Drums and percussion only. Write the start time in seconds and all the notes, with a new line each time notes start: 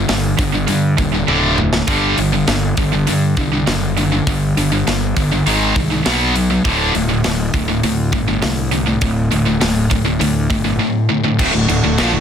0.09 snare, open hi-hat
0.39 kick, open hi-hat
0.68 open hi-hat
0.98 kick, open hi-hat
1.28 high tom
1.58 mid tom
1.73 snare
1.88 kick, open hi-hat
2.18 open hi-hat
2.48 snare, open hi-hat
2.77 kick, open hi-hat
3.07 open hi-hat
3.37 kick, open hi-hat
3.67 snare, open hi-hat
3.97 open hi-hat
4.27 kick, open hi-hat
4.57 open hi-hat
4.87 snare, open hi-hat
5.17 kick, open hi-hat
5.47 open hi-hat
5.76 kick, open hi-hat
6.06 snare, open hi-hat
6.36 open hi-hat
6.65 kick, open hi-hat
6.95 open hi-hat
7.24 snare, open hi-hat
7.54 kick, open hi-hat
7.83 open hi-hat
8.13 kick, open hi-hat
8.42 snare, open hi-hat
8.72 open hi-hat
9.01 kick, open hi-hat
9.32 open hi-hat
9.61 snare, open hi-hat
9.91 kick, open hi-hat
10.21 open hi-hat
10.50 kick, open hi-hat
11.39 kick, crash
11.69 crash
11.98 snare, crash